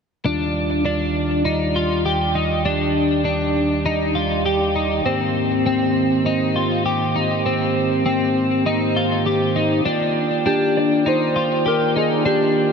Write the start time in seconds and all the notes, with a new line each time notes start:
0.25 D#2 D#3 G3 D4 F4 D5
0.85 D4
1.45 D#4
1.76 F4
2.06 G4
2.35 D#4
2.65 D4 G4
3.25 D4
3.86 D#4
4.15 F4
4.46 G4
4.76 D#4
5.05 G#2 A#3 C4 G4 C5
5.66 C4
6.26 D#4
6.56 F4
6.86 G4
7.16 D#4
7.46 C4
8.06 C4
8.66 D#4
8.96 F4
9.26 G4
9.56 D#4
9.86 D#3 A#3 D4 F4 D5 G5
10.46 D4 G4
10.77 D5
11.06 D#4 C5
11.36 F4
11.66 G4 A#4
11.96 D#4 G#4
12.26 D4 G4